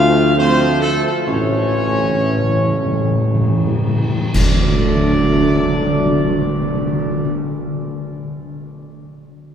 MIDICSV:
0, 0, Header, 1, 7, 480
1, 0, Start_track
1, 0, Key_signature, 2, "major"
1, 0, Tempo, 890208
1, 684, Time_signature, 3, 2, 24, 8
1, 684, Tempo, 991736
1, 1644, Tempo, 1081081
1, 4439, End_track
2, 0, Start_track
2, 0, Title_t, "Trumpet section"
2, 0, Program_c, 0, 61
2, 0, Note_on_c, 0, 77, 127
2, 178, Note_off_c, 0, 77, 0
2, 206, Note_on_c, 0, 72, 127
2, 424, Note_off_c, 0, 72, 0
2, 436, Note_on_c, 0, 69, 126
2, 550, Note_off_c, 0, 69, 0
2, 564, Note_on_c, 0, 69, 104
2, 679, Note_off_c, 0, 69, 0
2, 689, Note_on_c, 0, 73, 116
2, 1870, Note_off_c, 0, 73, 0
2, 2130, Note_on_c, 0, 74, 117
2, 3448, Note_off_c, 0, 74, 0
2, 4439, End_track
3, 0, Start_track
3, 0, Title_t, "French horn section"
3, 0, Program_c, 1, 60
3, 0, Note_on_c, 1, 65, 127
3, 175, Note_off_c, 1, 65, 0
3, 198, Note_on_c, 1, 60, 127
3, 428, Note_on_c, 1, 57, 116
3, 436, Note_off_c, 1, 60, 0
3, 485, Note_off_c, 1, 57, 0
3, 555, Note_on_c, 1, 57, 101
3, 673, Note_off_c, 1, 57, 0
3, 685, Note_on_c, 1, 61, 118
3, 1868, Note_off_c, 1, 61, 0
3, 2126, Note_on_c, 1, 62, 100
3, 3444, Note_off_c, 1, 62, 0
3, 4439, End_track
4, 0, Start_track
4, 0, Title_t, "Trombone section"
4, 0, Program_c, 2, 61
4, 0, Note_on_c, 2, 53, 118
4, 0, Note_on_c, 2, 57, 123
4, 177, Note_off_c, 2, 53, 0
4, 177, Note_off_c, 2, 57, 0
4, 194, Note_on_c, 2, 53, 116
4, 195, Note_on_c, 2, 57, 116
4, 661, Note_off_c, 2, 53, 0
4, 662, Note_off_c, 2, 57, 0
4, 684, Note_on_c, 2, 52, 96
4, 686, Note_on_c, 2, 57, 92
4, 1914, Note_off_c, 2, 52, 0
4, 1915, Note_off_c, 2, 57, 0
4, 2129, Note_on_c, 2, 54, 96
4, 2129, Note_on_c, 2, 57, 104
4, 3447, Note_off_c, 2, 54, 0
4, 3447, Note_off_c, 2, 57, 0
4, 4439, End_track
5, 0, Start_track
5, 0, Title_t, "Timpani"
5, 0, Program_c, 3, 47
5, 686, Note_on_c, 3, 45, 54
5, 723, Note_off_c, 3, 45, 0
5, 729, Note_on_c, 3, 45, 57
5, 768, Note_off_c, 3, 45, 0
5, 774, Note_on_c, 3, 45, 57
5, 814, Note_off_c, 3, 45, 0
5, 819, Note_on_c, 3, 45, 53
5, 856, Note_off_c, 3, 45, 0
5, 862, Note_on_c, 3, 45, 58
5, 901, Note_off_c, 3, 45, 0
5, 907, Note_on_c, 3, 45, 62
5, 945, Note_off_c, 3, 45, 0
5, 951, Note_on_c, 3, 45, 58
5, 992, Note_off_c, 3, 45, 0
5, 997, Note_on_c, 3, 45, 63
5, 1035, Note_off_c, 3, 45, 0
5, 1041, Note_on_c, 3, 45, 67
5, 1078, Note_off_c, 3, 45, 0
5, 1084, Note_on_c, 3, 45, 66
5, 1122, Note_off_c, 3, 45, 0
5, 1128, Note_on_c, 3, 45, 72
5, 1167, Note_off_c, 3, 45, 0
5, 1173, Note_on_c, 3, 45, 71
5, 1214, Note_off_c, 3, 45, 0
5, 1220, Note_on_c, 3, 45, 75
5, 1259, Note_off_c, 3, 45, 0
5, 1264, Note_on_c, 3, 45, 75
5, 1307, Note_off_c, 3, 45, 0
5, 1313, Note_on_c, 3, 45, 83
5, 1354, Note_off_c, 3, 45, 0
5, 1359, Note_on_c, 3, 45, 84
5, 1399, Note_off_c, 3, 45, 0
5, 1405, Note_on_c, 3, 45, 92
5, 1447, Note_off_c, 3, 45, 0
5, 1453, Note_on_c, 3, 45, 91
5, 1493, Note_off_c, 3, 45, 0
5, 1498, Note_on_c, 3, 45, 97
5, 1539, Note_off_c, 3, 45, 0
5, 1544, Note_on_c, 3, 45, 97
5, 1586, Note_off_c, 3, 45, 0
5, 1592, Note_on_c, 3, 45, 102
5, 1635, Note_off_c, 3, 45, 0
5, 1641, Note_on_c, 3, 45, 102
5, 1680, Note_off_c, 3, 45, 0
5, 1685, Note_on_c, 3, 45, 115
5, 1725, Note_off_c, 3, 45, 0
5, 1731, Note_on_c, 3, 45, 113
5, 1774, Note_off_c, 3, 45, 0
5, 1778, Note_on_c, 3, 45, 115
5, 1817, Note_off_c, 3, 45, 0
5, 1822, Note_on_c, 3, 45, 113
5, 1866, Note_off_c, 3, 45, 0
5, 1872, Note_on_c, 3, 45, 110
5, 1913, Note_off_c, 3, 45, 0
5, 1919, Note_on_c, 3, 45, 125
5, 1960, Note_off_c, 3, 45, 0
5, 1965, Note_on_c, 3, 45, 115
5, 2007, Note_off_c, 3, 45, 0
5, 2013, Note_on_c, 3, 45, 127
5, 2053, Note_off_c, 3, 45, 0
5, 2058, Note_on_c, 3, 45, 126
5, 2100, Note_off_c, 3, 45, 0
5, 2131, Note_on_c, 3, 50, 118
5, 2157, Note_off_c, 3, 50, 0
5, 2157, Note_on_c, 3, 50, 97
5, 2183, Note_off_c, 3, 50, 0
5, 2183, Note_on_c, 3, 50, 111
5, 2210, Note_off_c, 3, 50, 0
5, 2210, Note_on_c, 3, 50, 99
5, 2238, Note_off_c, 3, 50, 0
5, 2239, Note_on_c, 3, 50, 113
5, 2267, Note_off_c, 3, 50, 0
5, 2267, Note_on_c, 3, 50, 97
5, 2294, Note_off_c, 3, 50, 0
5, 2294, Note_on_c, 3, 50, 99
5, 2320, Note_off_c, 3, 50, 0
5, 2320, Note_on_c, 3, 50, 97
5, 2348, Note_off_c, 3, 50, 0
5, 2350, Note_on_c, 3, 50, 113
5, 2378, Note_off_c, 3, 50, 0
5, 2378, Note_on_c, 3, 50, 94
5, 2404, Note_off_c, 3, 50, 0
5, 2404, Note_on_c, 3, 50, 95
5, 2433, Note_off_c, 3, 50, 0
5, 2438, Note_on_c, 3, 50, 94
5, 2465, Note_off_c, 3, 50, 0
5, 2465, Note_on_c, 3, 50, 114
5, 2493, Note_off_c, 3, 50, 0
5, 2493, Note_on_c, 3, 50, 94
5, 2519, Note_off_c, 3, 50, 0
5, 2519, Note_on_c, 3, 50, 105
5, 2546, Note_off_c, 3, 50, 0
5, 2546, Note_on_c, 3, 50, 89
5, 2575, Note_off_c, 3, 50, 0
5, 2575, Note_on_c, 3, 50, 107
5, 2604, Note_off_c, 3, 50, 0
5, 2605, Note_on_c, 3, 50, 93
5, 2633, Note_off_c, 3, 50, 0
5, 2635, Note_on_c, 3, 50, 98
5, 2663, Note_off_c, 3, 50, 0
5, 2663, Note_on_c, 3, 50, 106
5, 2692, Note_off_c, 3, 50, 0
5, 2692, Note_on_c, 3, 50, 96
5, 2720, Note_off_c, 3, 50, 0
5, 2720, Note_on_c, 3, 50, 91
5, 2747, Note_off_c, 3, 50, 0
5, 2747, Note_on_c, 3, 50, 118
5, 2776, Note_off_c, 3, 50, 0
5, 2777, Note_on_c, 3, 50, 94
5, 2805, Note_off_c, 3, 50, 0
5, 2806, Note_on_c, 3, 50, 106
5, 2833, Note_off_c, 3, 50, 0
5, 2833, Note_on_c, 3, 50, 91
5, 2862, Note_off_c, 3, 50, 0
5, 2862, Note_on_c, 3, 50, 107
5, 2889, Note_off_c, 3, 50, 0
5, 2889, Note_on_c, 3, 50, 98
5, 2917, Note_off_c, 3, 50, 0
5, 2919, Note_on_c, 3, 50, 106
5, 2947, Note_off_c, 3, 50, 0
5, 2947, Note_on_c, 3, 50, 91
5, 2973, Note_off_c, 3, 50, 0
5, 2973, Note_on_c, 3, 50, 108
5, 3000, Note_off_c, 3, 50, 0
5, 3000, Note_on_c, 3, 50, 97
5, 3028, Note_off_c, 3, 50, 0
5, 3028, Note_on_c, 3, 50, 99
5, 3055, Note_off_c, 3, 50, 0
5, 3055, Note_on_c, 3, 50, 100
5, 3082, Note_off_c, 3, 50, 0
5, 3082, Note_on_c, 3, 50, 107
5, 3111, Note_off_c, 3, 50, 0
5, 3111, Note_on_c, 3, 50, 99
5, 3138, Note_off_c, 3, 50, 0
5, 3138, Note_on_c, 3, 50, 106
5, 3167, Note_off_c, 3, 50, 0
5, 3168, Note_on_c, 3, 50, 105
5, 3196, Note_off_c, 3, 50, 0
5, 3197, Note_on_c, 3, 50, 109
5, 3225, Note_off_c, 3, 50, 0
5, 3225, Note_on_c, 3, 50, 96
5, 3251, Note_off_c, 3, 50, 0
5, 3251, Note_on_c, 3, 50, 103
5, 3278, Note_off_c, 3, 50, 0
5, 3278, Note_on_c, 3, 50, 103
5, 3305, Note_off_c, 3, 50, 0
5, 3305, Note_on_c, 3, 50, 106
5, 3331, Note_off_c, 3, 50, 0
5, 3331, Note_on_c, 3, 50, 98
5, 3358, Note_off_c, 3, 50, 0
5, 3358, Note_on_c, 3, 50, 105
5, 3387, Note_off_c, 3, 50, 0
5, 3387, Note_on_c, 3, 50, 94
5, 3416, Note_off_c, 3, 50, 0
5, 3418, Note_on_c, 3, 50, 105
5, 3446, Note_off_c, 3, 50, 0
5, 4439, End_track
6, 0, Start_track
6, 0, Title_t, "Tuba"
6, 0, Program_c, 4, 58
6, 0, Note_on_c, 4, 38, 127
6, 595, Note_off_c, 4, 38, 0
6, 686, Note_on_c, 4, 33, 98
6, 1916, Note_off_c, 4, 33, 0
6, 2132, Note_on_c, 4, 38, 112
6, 3450, Note_off_c, 4, 38, 0
6, 4439, End_track
7, 0, Start_track
7, 0, Title_t, "Drums"
7, 2129, Note_on_c, 9, 35, 92
7, 2129, Note_on_c, 9, 49, 85
7, 2173, Note_off_c, 9, 35, 0
7, 2173, Note_off_c, 9, 49, 0
7, 4439, End_track
0, 0, End_of_file